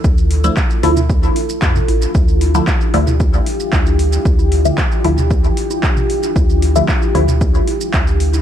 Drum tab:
HH |--o---o---o---o-|--o---o---o---o-|--o---o---o---o-|--o---o---o---o-|
SH |xx-xxx-xxx-xxx-x|xx-xxx-xxx-xxx-x|xx-xxx-xxx-xxx-x|xx-xxx-xxx-xxx-x|
CP |----x-------x---|----x-------x---|----x-------x---|----x-------x---|
T2 |-------o-----o--|-------o--------|-------o-----o--|-------o--------|
CG |----o----o----o-|--o----o----o---|-o----o----o----|o----o----o----o|
BD |o---o---o---o---|o---o---o---o---|o---o---o---o---|o---o---o---o---|